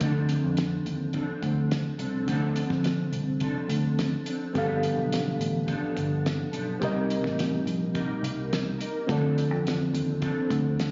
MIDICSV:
0, 0, Header, 1, 5, 480
1, 0, Start_track
1, 0, Tempo, 567108
1, 9, Time_signature, 4, 2, 24, 8
1, 9238, End_track
2, 0, Start_track
2, 0, Title_t, "Reed electric piano"
2, 0, Program_c, 0, 4
2, 3835, Note_on_c, 0, 59, 72
2, 3852, Note_on_c, 0, 67, 59
2, 3863, Note_on_c, 0, 69, 63
2, 3878, Note_on_c, 0, 77, 74
2, 4006, Control_c, 0, 64, 127
2, 5729, Note_off_c, 0, 59, 0
2, 5738, Note_off_c, 0, 67, 0
2, 5743, Note_off_c, 0, 69, 0
2, 5750, Note_off_c, 0, 77, 0
2, 5755, Note_on_c, 0, 60, 73
2, 5768, Note_on_c, 0, 67, 61
2, 5781, Control_c, 0, 64, 0
2, 5782, Note_on_c, 0, 70, 63
2, 5795, Note_on_c, 0, 75, 80
2, 5943, Control_c, 0, 64, 127
2, 7650, Note_off_c, 0, 60, 0
2, 7656, Note_off_c, 0, 67, 0
2, 7663, Note_off_c, 0, 70, 0
2, 7670, Note_off_c, 0, 75, 0
2, 7675, Note_on_c, 0, 60, 70
2, 7688, Note_on_c, 0, 65, 62
2, 7702, Control_c, 0, 64, 0
2, 7704, Note_on_c, 0, 69, 64
2, 7717, Note_on_c, 0, 74, 75
2, 7864, Control_c, 0, 64, 127
2, 9238, Note_off_c, 0, 60, 0
2, 9238, Note_off_c, 0, 65, 0
2, 9238, Note_off_c, 0, 69, 0
2, 9238, Note_off_c, 0, 74, 0
2, 9238, End_track
3, 0, Start_track
3, 0, Title_t, "Clean electric guitar"
3, 0, Program_c, 1, 27
3, 0, Note_on_c, 1, 50, 82
3, 10, Note_on_c, 1, 53, 82
3, 18, Note_on_c, 1, 60, 78
3, 31, Note_on_c, 1, 62, 85
3, 39, Note_on_c, 1, 69, 83
3, 958, Note_off_c, 1, 53, 0
3, 962, Note_off_c, 1, 60, 0
3, 962, Note_on_c, 1, 53, 59
3, 972, Note_on_c, 1, 60, 64
3, 978, Note_off_c, 1, 62, 0
3, 981, Note_on_c, 1, 62, 63
3, 988, Note_off_c, 1, 69, 0
3, 992, Note_on_c, 1, 69, 62
3, 997, Note_off_c, 1, 50, 0
3, 1674, Note_off_c, 1, 69, 0
3, 1678, Note_on_c, 1, 69, 54
3, 1689, Note_off_c, 1, 62, 0
3, 1691, Note_off_c, 1, 60, 0
3, 1693, Note_on_c, 1, 62, 50
3, 1705, Note_on_c, 1, 60, 49
3, 1915, Note_on_c, 1, 50, 86
3, 1923, Note_off_c, 1, 69, 0
3, 1926, Note_off_c, 1, 53, 0
3, 1929, Note_off_c, 1, 60, 0
3, 1929, Note_on_c, 1, 53, 76
3, 1931, Note_off_c, 1, 62, 0
3, 1939, Note_on_c, 1, 60, 85
3, 1953, Note_on_c, 1, 62, 89
3, 1959, Note_on_c, 1, 69, 82
3, 2879, Note_off_c, 1, 53, 0
3, 2882, Note_on_c, 1, 53, 54
3, 2885, Note_off_c, 1, 60, 0
3, 2895, Note_on_c, 1, 60, 58
3, 2896, Note_off_c, 1, 62, 0
3, 2899, Note_on_c, 1, 62, 60
3, 2907, Note_off_c, 1, 69, 0
3, 2910, Note_on_c, 1, 69, 66
3, 2920, Note_off_c, 1, 50, 0
3, 3596, Note_off_c, 1, 69, 0
3, 3600, Note_on_c, 1, 69, 48
3, 3609, Note_off_c, 1, 62, 0
3, 3612, Note_off_c, 1, 60, 0
3, 3613, Note_on_c, 1, 62, 46
3, 3627, Note_on_c, 1, 60, 43
3, 3834, Note_on_c, 1, 43, 77
3, 3845, Note_off_c, 1, 69, 0
3, 3845, Note_on_c, 1, 50, 79
3, 3848, Note_off_c, 1, 53, 0
3, 3851, Note_off_c, 1, 62, 0
3, 3851, Note_on_c, 1, 53, 85
3, 3858, Note_off_c, 1, 60, 0
3, 3862, Note_on_c, 1, 59, 85
3, 3869, Note_on_c, 1, 62, 82
3, 3876, Note_on_c, 1, 69, 89
3, 4784, Note_off_c, 1, 53, 0
3, 4794, Note_on_c, 1, 53, 60
3, 4795, Note_off_c, 1, 59, 0
3, 4802, Note_off_c, 1, 43, 0
3, 4805, Note_on_c, 1, 59, 62
3, 4806, Note_off_c, 1, 62, 0
3, 4808, Note_off_c, 1, 50, 0
3, 4812, Note_off_c, 1, 69, 0
3, 4816, Note_on_c, 1, 62, 61
3, 4822, Note_on_c, 1, 69, 61
3, 5505, Note_off_c, 1, 69, 0
3, 5516, Note_on_c, 1, 69, 48
3, 5518, Note_off_c, 1, 62, 0
3, 5522, Note_off_c, 1, 53, 0
3, 5525, Note_off_c, 1, 59, 0
3, 5528, Note_on_c, 1, 62, 46
3, 5535, Note_on_c, 1, 59, 48
3, 5546, Note_on_c, 1, 53, 42
3, 5750, Note_on_c, 1, 48, 91
3, 5761, Note_off_c, 1, 53, 0
3, 5763, Note_off_c, 1, 69, 0
3, 5765, Note_on_c, 1, 55, 86
3, 5769, Note_off_c, 1, 62, 0
3, 5772, Note_off_c, 1, 59, 0
3, 5775, Note_on_c, 1, 58, 82
3, 5788, Note_on_c, 1, 63, 81
3, 5794, Note_on_c, 1, 70, 85
3, 6707, Note_off_c, 1, 55, 0
3, 6715, Note_off_c, 1, 58, 0
3, 6718, Note_on_c, 1, 55, 59
3, 6721, Note_off_c, 1, 48, 0
3, 6725, Note_on_c, 1, 58, 63
3, 6727, Note_off_c, 1, 63, 0
3, 6732, Note_off_c, 1, 70, 0
3, 6737, Note_on_c, 1, 63, 67
3, 6742, Note_on_c, 1, 70, 66
3, 7427, Note_off_c, 1, 70, 0
3, 7437, Note_on_c, 1, 70, 58
3, 7445, Note_off_c, 1, 55, 0
3, 7445, Note_off_c, 1, 63, 0
3, 7448, Note_off_c, 1, 58, 0
3, 7455, Note_on_c, 1, 63, 47
3, 7464, Note_on_c, 1, 58, 44
3, 7679, Note_on_c, 1, 50, 87
3, 7684, Note_off_c, 1, 70, 0
3, 7688, Note_on_c, 1, 53, 90
3, 7693, Note_off_c, 1, 63, 0
3, 7698, Note_off_c, 1, 58, 0
3, 7701, Note_on_c, 1, 60, 81
3, 7708, Note_on_c, 1, 62, 81
3, 7720, Note_on_c, 1, 69, 94
3, 8635, Note_off_c, 1, 53, 0
3, 8638, Note_on_c, 1, 53, 62
3, 8639, Note_off_c, 1, 60, 0
3, 8649, Note_on_c, 1, 60, 64
3, 8653, Note_off_c, 1, 62, 0
3, 8657, Note_on_c, 1, 62, 66
3, 8662, Note_off_c, 1, 69, 0
3, 8665, Note_on_c, 1, 69, 67
3, 8674, Note_off_c, 1, 50, 0
3, 9238, Note_off_c, 1, 53, 0
3, 9238, Note_off_c, 1, 60, 0
3, 9238, Note_off_c, 1, 62, 0
3, 9238, Note_off_c, 1, 69, 0
3, 9238, End_track
4, 0, Start_track
4, 0, Title_t, "Picked electric bass"
4, 0, Program_c, 2, 34
4, 11, Note_on_c, 2, 38, 98
4, 298, Note_off_c, 2, 38, 0
4, 375, Note_on_c, 2, 41, 76
4, 661, Note_off_c, 2, 41, 0
4, 724, Note_on_c, 2, 39, 83
4, 1014, Note_off_c, 2, 39, 0
4, 1206, Note_on_c, 2, 38, 88
4, 1591, Note_off_c, 2, 38, 0
4, 1687, Note_on_c, 2, 36, 77
4, 1880, Note_off_c, 2, 36, 0
4, 1928, Note_on_c, 2, 38, 92
4, 2217, Note_off_c, 2, 38, 0
4, 2284, Note_on_c, 2, 34, 77
4, 2574, Note_off_c, 2, 34, 0
4, 2642, Note_on_c, 2, 36, 83
4, 2933, Note_off_c, 2, 36, 0
4, 3120, Note_on_c, 2, 38, 81
4, 3508, Note_off_c, 2, 38, 0
4, 3854, Note_on_c, 2, 31, 90
4, 4140, Note_off_c, 2, 31, 0
4, 4208, Note_on_c, 2, 35, 82
4, 4496, Note_off_c, 2, 35, 0
4, 4563, Note_on_c, 2, 33, 75
4, 4854, Note_off_c, 2, 33, 0
4, 5048, Note_on_c, 2, 31, 88
4, 5433, Note_off_c, 2, 31, 0
4, 5527, Note_on_c, 2, 35, 76
4, 5720, Note_off_c, 2, 35, 0
4, 5770, Note_on_c, 2, 36, 96
4, 6058, Note_off_c, 2, 36, 0
4, 6129, Note_on_c, 2, 33, 74
4, 6417, Note_off_c, 2, 33, 0
4, 6479, Note_on_c, 2, 34, 80
4, 6772, Note_off_c, 2, 34, 0
4, 6964, Note_on_c, 2, 36, 83
4, 7351, Note_off_c, 2, 36, 0
4, 7691, Note_on_c, 2, 38, 94
4, 8047, Note_off_c, 2, 38, 0
4, 8047, Note_on_c, 2, 41, 79
4, 8337, Note_off_c, 2, 41, 0
4, 8409, Note_on_c, 2, 39, 83
4, 8698, Note_off_c, 2, 39, 0
4, 8889, Note_on_c, 2, 38, 90
4, 9238, Note_off_c, 2, 38, 0
4, 9238, End_track
5, 0, Start_track
5, 0, Title_t, "Drums"
5, 6, Note_on_c, 9, 42, 83
5, 10, Note_on_c, 9, 36, 82
5, 90, Note_off_c, 9, 42, 0
5, 94, Note_off_c, 9, 36, 0
5, 244, Note_on_c, 9, 42, 72
5, 328, Note_off_c, 9, 42, 0
5, 483, Note_on_c, 9, 42, 87
5, 495, Note_on_c, 9, 38, 95
5, 568, Note_off_c, 9, 42, 0
5, 580, Note_off_c, 9, 38, 0
5, 729, Note_on_c, 9, 42, 64
5, 813, Note_off_c, 9, 42, 0
5, 958, Note_on_c, 9, 42, 62
5, 967, Note_on_c, 9, 36, 78
5, 1042, Note_off_c, 9, 42, 0
5, 1051, Note_off_c, 9, 36, 0
5, 1207, Note_on_c, 9, 36, 79
5, 1207, Note_on_c, 9, 42, 75
5, 1291, Note_off_c, 9, 36, 0
5, 1292, Note_off_c, 9, 42, 0
5, 1451, Note_on_c, 9, 42, 78
5, 1453, Note_on_c, 9, 38, 83
5, 1535, Note_off_c, 9, 42, 0
5, 1538, Note_off_c, 9, 38, 0
5, 1685, Note_on_c, 9, 42, 60
5, 1769, Note_off_c, 9, 42, 0
5, 1929, Note_on_c, 9, 42, 79
5, 1930, Note_on_c, 9, 36, 87
5, 2014, Note_off_c, 9, 36, 0
5, 2014, Note_off_c, 9, 42, 0
5, 2164, Note_on_c, 9, 42, 71
5, 2249, Note_off_c, 9, 42, 0
5, 2288, Note_on_c, 9, 36, 83
5, 2299, Note_on_c, 9, 38, 31
5, 2372, Note_off_c, 9, 36, 0
5, 2383, Note_off_c, 9, 38, 0
5, 2406, Note_on_c, 9, 42, 88
5, 2418, Note_on_c, 9, 38, 92
5, 2491, Note_off_c, 9, 42, 0
5, 2503, Note_off_c, 9, 38, 0
5, 2647, Note_on_c, 9, 42, 65
5, 2731, Note_off_c, 9, 42, 0
5, 2880, Note_on_c, 9, 42, 61
5, 2890, Note_on_c, 9, 36, 77
5, 2965, Note_off_c, 9, 42, 0
5, 2974, Note_off_c, 9, 36, 0
5, 3128, Note_on_c, 9, 42, 77
5, 3212, Note_off_c, 9, 42, 0
5, 3375, Note_on_c, 9, 42, 72
5, 3377, Note_on_c, 9, 38, 80
5, 3460, Note_off_c, 9, 42, 0
5, 3462, Note_off_c, 9, 38, 0
5, 3607, Note_on_c, 9, 42, 64
5, 3692, Note_off_c, 9, 42, 0
5, 3853, Note_on_c, 9, 36, 86
5, 3853, Note_on_c, 9, 42, 78
5, 3937, Note_off_c, 9, 36, 0
5, 3937, Note_off_c, 9, 42, 0
5, 4089, Note_on_c, 9, 42, 73
5, 4174, Note_off_c, 9, 42, 0
5, 4338, Note_on_c, 9, 42, 87
5, 4349, Note_on_c, 9, 38, 86
5, 4422, Note_off_c, 9, 42, 0
5, 4434, Note_off_c, 9, 38, 0
5, 4578, Note_on_c, 9, 42, 65
5, 4663, Note_off_c, 9, 42, 0
5, 4807, Note_on_c, 9, 42, 65
5, 4812, Note_on_c, 9, 36, 75
5, 4892, Note_off_c, 9, 42, 0
5, 4896, Note_off_c, 9, 36, 0
5, 5050, Note_on_c, 9, 36, 82
5, 5053, Note_on_c, 9, 42, 70
5, 5135, Note_off_c, 9, 36, 0
5, 5137, Note_off_c, 9, 42, 0
5, 5299, Note_on_c, 9, 42, 70
5, 5302, Note_on_c, 9, 38, 87
5, 5384, Note_off_c, 9, 42, 0
5, 5386, Note_off_c, 9, 38, 0
5, 5528, Note_on_c, 9, 42, 66
5, 5613, Note_off_c, 9, 42, 0
5, 5771, Note_on_c, 9, 36, 90
5, 5773, Note_on_c, 9, 42, 82
5, 5855, Note_off_c, 9, 36, 0
5, 5858, Note_off_c, 9, 42, 0
5, 6012, Note_on_c, 9, 42, 71
5, 6097, Note_off_c, 9, 42, 0
5, 6129, Note_on_c, 9, 36, 86
5, 6146, Note_on_c, 9, 38, 34
5, 6214, Note_off_c, 9, 36, 0
5, 6230, Note_off_c, 9, 38, 0
5, 6255, Note_on_c, 9, 42, 88
5, 6267, Note_on_c, 9, 38, 88
5, 6340, Note_off_c, 9, 42, 0
5, 6352, Note_off_c, 9, 38, 0
5, 6493, Note_on_c, 9, 42, 65
5, 6578, Note_off_c, 9, 42, 0
5, 6728, Note_on_c, 9, 42, 67
5, 6731, Note_on_c, 9, 36, 77
5, 6813, Note_off_c, 9, 42, 0
5, 6816, Note_off_c, 9, 36, 0
5, 6976, Note_on_c, 9, 42, 73
5, 7060, Note_off_c, 9, 42, 0
5, 7218, Note_on_c, 9, 42, 68
5, 7221, Note_on_c, 9, 38, 85
5, 7303, Note_off_c, 9, 42, 0
5, 7305, Note_off_c, 9, 38, 0
5, 7453, Note_on_c, 9, 42, 61
5, 7538, Note_off_c, 9, 42, 0
5, 7694, Note_on_c, 9, 36, 96
5, 7698, Note_on_c, 9, 42, 88
5, 7779, Note_off_c, 9, 36, 0
5, 7783, Note_off_c, 9, 42, 0
5, 7938, Note_on_c, 9, 42, 74
5, 8023, Note_off_c, 9, 42, 0
5, 8183, Note_on_c, 9, 42, 88
5, 8195, Note_on_c, 9, 38, 90
5, 8268, Note_off_c, 9, 42, 0
5, 8280, Note_off_c, 9, 38, 0
5, 8418, Note_on_c, 9, 42, 67
5, 8503, Note_off_c, 9, 42, 0
5, 8649, Note_on_c, 9, 42, 66
5, 8654, Note_on_c, 9, 36, 82
5, 8733, Note_off_c, 9, 42, 0
5, 8738, Note_off_c, 9, 36, 0
5, 8891, Note_on_c, 9, 36, 78
5, 8893, Note_on_c, 9, 42, 76
5, 8976, Note_off_c, 9, 36, 0
5, 8977, Note_off_c, 9, 42, 0
5, 9137, Note_on_c, 9, 42, 74
5, 9140, Note_on_c, 9, 38, 87
5, 9222, Note_off_c, 9, 42, 0
5, 9224, Note_off_c, 9, 38, 0
5, 9238, End_track
0, 0, End_of_file